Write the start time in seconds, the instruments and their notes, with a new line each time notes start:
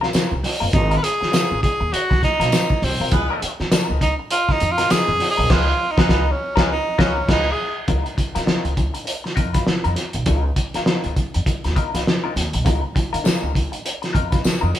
0.01 hollow-body jazz guitar F#3 C4 F4 A#4, snare
0.13 hollow-body jazz guitar F#3 C4 F4 A#4, muted upright bass stroke, snare, closed hi-hat, tambourine
0.31 upright bass C2
0.43 muted hollow-body jazz guitar stroke, snare, open hi-hat
0.60 upright bass F#1, hollow-body jazz guitar F#3 C4 F4 A#4
0.73 upright bass G#1, tenor saxophone D#4, muted hollow-body jazz guitar stroke, kick, closed hi-hat
0.91 hollow-body jazz guitar F#3 C4 F4 A#4, closed hi-hat
0.97 tenor saxophone B4
1.02 tenor saxophone G#4, muted hollow-body jazz guitar stroke, closed hi-hat
1.21 muted hollow-body jazz guitar stroke, muted upright bass stroke, snare
1.32 hollow-body jazz guitar F#3 C4 F4 A#4, snare, closed hi-hat, tambourine
1.51 upright bass G#1
1.63 tenor saxophone G#4, kick, closed hi-hat
1.80 upright bass D#2, muted hollow-body jazz guitar stroke
1.92 tenor saxophone F#4, muted hollow-body jazz guitar stroke, muted upright bass stroke, closed hi-hat
2.10 upright bass C2, muted hollow-body jazz guitar stroke, kick, snare
2.23 tenor saxophone D#4, kick, snare, closed hi-hat
2.40 upright bass B1, hollow-body jazz guitar F#3 C4 F4 A#4, snare, closed hi-hat
2.52 hollow-body jazz guitar F#3 C4 F4 A#4, snare, closed hi-hat, tambourine
2.70 kick
2.82 upright bass C2, tenor saxophone C4, muted hollow-body jazz guitar stroke, snare, open hi-hat
3.00 upright bass C2, hollow-body jazz guitar F#3 C4 F4 A#4
3.12 upright bass C#2, horn section G#3 B3 F4 B4, muted hollow-body jazz guitar stroke, kick, closed hi-hat
3.30 hollow-body jazz guitar F3 B3 D#4 A#4
3.42 muted hollow-body jazz guitar stroke, muted upright bass stroke, closed hi-hat
3.60 upright bass C#3, muted hollow-body jazz guitar stroke, snare
3.72 hollow-body jazz guitar E3 A#3 D4 A4, muted upright bass stroke, snare, closed hi-hat, tambourine
3.83 hollow-body jazz guitar F3 B3 D#4 A#4
3.90 upright bass C#2
4.01 tenor saxophone D#4, muted hollow-body jazz guitar stroke, kick, closed hi-hat
4.19 muted hollow-body jazz guitar stroke
4.31 tenor saxophone F4, muted hollow-body jazz guitar stroke, closed hi-hat
4.49 tenor saxophone D#4, muted hollow-body jazz guitar stroke, kick, snare
4.60 upright bass F2, closed hi-hat
4.72 tenor saxophone F4
4.78 hollow-body jazz guitar F3 B3 D#4 A#4, snare, closed hi-hat
4.90 hollow-body jazz guitar F3 B3 D#4 A#4, tenor saxophone G#4, muted upright bass stroke, snare, closed hi-hat, tambourine
5.08 upright bass F2
5.20 muted hollow-body jazz guitar stroke, snare, open hi-hat
5.30 tenor saxophone G#4
5.37 upright bass B1, hollow-body jazz guitar F3 B3 D#4 A#4
5.49 upright bass C#2, hollow-body jazz guitar F3 B3 D#4 A#4, horn section G#3 B3 F4 B4, tenor saxophone F4, kick, snare, crash
5.91 tenor saxophone D#4
5.97 upright bass C#2, hollow-body jazz guitar F3 B3 D#4 A#4, horn section G#3 B3 F4 B4, kick, snare
6.08 upright bass C#2, hollow-body jazz guitar F3 B3 D#4 A#4, horn section G#3 B3 F4 B4, kick, snare
6.31 tenor saxophone C#4
6.56 upright bass C#2, hollow-body jazz guitar F3 B3 D#4 A#4, horn section G#3 B3 F4 B4, kick, snare
6.71 tenor saxophone D#4
6.98 upright bass C#2, hollow-body jazz guitar F3 B3 D#4 A#4, horn section G#3 B3 F4 B4, tenor saxophone C#4, kick, snare
7.27 upright bass C#2, hollow-body jazz guitar F3 B3 D#4 A#4, horn section G#3 B3 F4 B4, kick, snare, crash
7.32 tenor saxophone D#4
7.52 tenor saxophone G#4
7.88 upright bass C#2, hollow-body jazz guitar B3 D#4 F4 A#4, kick, closed hi-hat
8.06 muted hollow-body jazz guitar stroke, closed hi-hat
8.17 muted hollow-body jazz guitar stroke, muted upright bass stroke, kick, closed hi-hat
8.35 upright bass C#3, hollow-body jazz guitar B3 D#4 F4 A#4, snare, closed hi-hat
8.45 hollow-body jazz guitar B3 D#4 F4 A#4, muted upright bass stroke, snare
8.65 upright bass C#2, closed hi-hat
8.76 muted hollow-body jazz guitar stroke, kick, closed hi-hat
8.94 muted hollow-body jazz guitar stroke, closed hi-hat
9.05 muted hollow-body jazz guitar stroke, closed hi-hat
9.24 muted hollow-body jazz guitar stroke, snare
9.36 upright bass F2, hollow-body jazz guitar B3 D#4 F4 A#4, kick, closed hi-hat
9.53 hollow-body jazz guitar B3 D#4 F4 B4, kick, snare, closed hi-hat
9.67 muted upright bass stroke, snare
9.84 upright bass F2, hollow-body jazz guitar B3 D#4 F4 A#4, closed hi-hat
9.96 muted hollow-body jazz guitar stroke, snare, closed hi-hat
10.13 upright bass B1, muted hollow-body jazz guitar stroke, closed hi-hat
10.26 upright bass C#2, hollow-body jazz guitar B3 D#4 F4 A#4, kick, closed hi-hat
10.44 muted hollow-body jazz guitar stroke
10.56 muted hollow-body jazz guitar stroke, kick, closed hi-hat
10.74 hollow-body jazz guitar B3 D#4 F4 A#4, muted upright bass stroke, snare, closed hi-hat
10.86 hollow-body jazz guitar B3 D#4 F4 A#4, snare
11.04 upright bass C#2, closed hi-hat
11.16 muted hollow-body jazz guitar stroke, kick, closed hi-hat
11.34 upright bass F2, muted hollow-body jazz guitar stroke, closed hi-hat
11.46 muted upright bass stroke, muted hollow-body jazz guitar stroke, kick, closed hi-hat
11.64 upright bass D#2, muted hollow-body jazz guitar stroke, snare, closed hi-hat
11.76 hollow-body jazz guitar B3 D#4 F4 A#4, kick, closed hi-hat
11.93 upright bass C#2, hollow-body jazz guitar B3 D#4 F4 B4, snare, closed hi-hat
12.07 muted hollow-body jazz guitar stroke, snare
12.24 hollow-body jazz guitar B3 D#4 F4 A#4
12.36 upright bass D#2, muted hollow-body jazz guitar stroke, snare, closed hi-hat
12.53 upright bass B1, muted hollow-body jazz guitar stroke, closed hi-hat
12.65 upright bass C#2, hollow-body jazz guitar B3 D#4 F4 A#4, kick, closed hi-hat
12.83 muted hollow-body jazz guitar stroke
12.95 muted hollow-body jazz guitar stroke, muted upright bass stroke, kick, closed hi-hat
13.13 upright bass C#3, hollow-body jazz guitar B3 D#4 F4 A#4, closed hi-hat
13.23 hollow-body jazz guitar A#3 D4 E4 A4, muted upright bass stroke, snare, tambourine
13.35 hollow-body jazz guitar B3 D#4 F4 A#4
13.42 upright bass C#2
13.54 muted hollow-body jazz guitar stroke, kick, closed hi-hat
13.72 muted hollow-body jazz guitar stroke, closed hi-hat
13.85 muted hollow-body jazz guitar stroke, closed hi-hat
14.02 muted hollow-body jazz guitar stroke, snare, closed hi-hat
14.13 upright bass F2, hollow-body jazz guitar B3 D#4 F4 A#4, kick, closed hi-hat
14.30 hollow-body jazz guitar B3 D#4 F4 B4, kick, snare, closed hi-hat
14.44 muted hollow-body jazz guitar stroke, muted upright bass stroke, snare, tambourine
14.61 upright bass F2, hollow-body jazz guitar B3 D#4 F4 A#4
14.74 snare, closed hi-hat